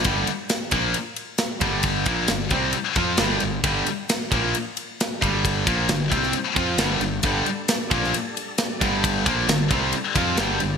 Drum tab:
RD |x-x-x-x-x-x-x-x-|x-x-x-x-x-x-x-x-|x-x-x-x-x-x-x-x-|x-x-x-x-x-x-x-x-|
SD |----o-------o---|----o-------o---|----o-------o---|----o--o----o---|
BD |o-----o-------o-|o-o---o---o-----|o-----o-------o-|o-o---o---o-----|

RD |x-x-x-x-x-x-x-x-|x-x-x-x-x-x-x-x-|
SD |----o--o----o---|----o-------o---|
BD |o-----o-------o-|o-o---o---o-----|